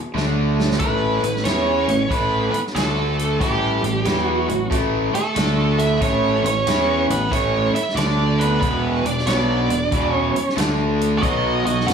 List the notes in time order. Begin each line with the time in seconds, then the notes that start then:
0.15 D2 D3 A3 D4, snare
0.60 snare
0.71 snare
0.79 A1 A2 E3 A3 E4 B4, kick, closed hi-hat
1.23 A1 A2 E3, closed hi-hat
1.36 snare
1.44 E2 E3 B3 C#4 E4 C#5, snare, closed hi-hat
1.88 A1 A2 E3, closed hi-hat
2.09 A1 A2 E3 A3 E4 B4, kick, closed hi-hat
2.52 B3 B4, muted fingered electric bass stroke, muted overdriven electric guitar stroke, closed hi-hat
2.67 snare
2.75 D2 D3 A3 D4 A4, snare, closed hi-hat
3.19 closed hi-hat
3.39 A1 A2 E3 G3 A3 G4, kick, closed hi-hat
3.83 A1 A2 E3, closed hi-hat
4.05 E2 E3 B3 E4, snare, closed hi-hat
4.23 F#3 F#4
4.48 A1 A2 E3, closed hi-hat
4.70 A1 A2 E3 A3, kick, closed hi-hat
5.14 A3 A4, muted fingered electric bass stroke, muted overdriven electric guitar stroke, closed hi-hat
5.36 D2 D3 A3 D4, snare, closed hi-hat
5.78 E4 E5, closed hi-hat
6.01 A1 A2 E3 A3 C#4 C#5, kick, closed hi-hat
6.44 A1 A2 E3 C#4 C#5, closed hi-hat
6.66 E2 E3 B3 E4, snare, closed hi-hat
7.08 A1 A2 E3 B3 B4, closed hi-hat
7.31 A1 A2 E3 A3 C#4 C#5, kick, closed hi-hat
7.74 E4 E5, muted fingered electric bass stroke, muted overdriven electric guitar stroke, closed hi-hat
7.89 snare
7.95 D2 D3 A3 D4 D5, snare, closed hi-hat
7.99 D4
8.39 B4, closed hi-hat
8.43 B3
8.61 E1 E2 B2 E3 B3 B4, kick, closed hi-hat
9.04 E1 E2 B2 D4 D5, closed hi-hat
9.19 snare
9.26 B1 B2 F#3 B3 D4 D5, snare, closed hi-hat
9.69 E1 E2 B2, closed hi-hat
9.91 E1 E2 B2 E3, kick, closed hi-hat
10.10 C#4 C#5
10.35 muted fingered electric bass stroke, muted overdriven electric guitar stroke, closed hi-hat
10.49 snare
10.57 D2 D3 A3 D4, snare, closed hi-hat
11.01 closed hi-hat
11.18 F#4 D5
11.22 B1 B2 F#3 B3 F#4 A4 C#5 D#5 F#5, kick, closed hi-hat
11.65 B1 B2 F#3 F#4 D#5, closed hi-hat
11.80 snare
11.86 F#2 F#3 C#4 F#4 A4 F#5, snare, closed hi-hat